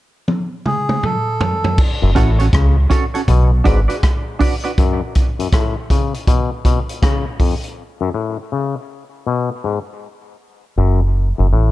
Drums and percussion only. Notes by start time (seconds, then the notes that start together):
0.28 high tom
0.66 mid tom
0.89 mid tom
1.03 mid tom
1.41 floor tom
1.64 floor tom
1.78 kick, crash
2.16 kick, cross-stick, closed hi-hat
2.40 closed hi-hat
2.53 kick, cross-stick, closed hi-hat
2.91 kick, closed hi-hat
3.15 closed hi-hat
3.28 kick, closed hi-hat
3.65 kick, closed hi-hat
3.90 closed hi-hat
4.03 kick, cross-stick, closed hi-hat
4.41 kick, open hi-hat
4.64 closed hi-hat
4.78 kick, closed hi-hat
5.15 kick, closed hi-hat
5.40 closed hi-hat
5.52 kick, cross-stick, closed hi-hat
5.90 kick, closed hi-hat
6.14 closed hi-hat
6.27 kick, closed hi-hat
6.65 kick, closed hi-hat
6.89 closed hi-hat
7.03 kick, cross-stick, closed hi-hat
7.40 kick, open hi-hat
7.64 closed hi-hat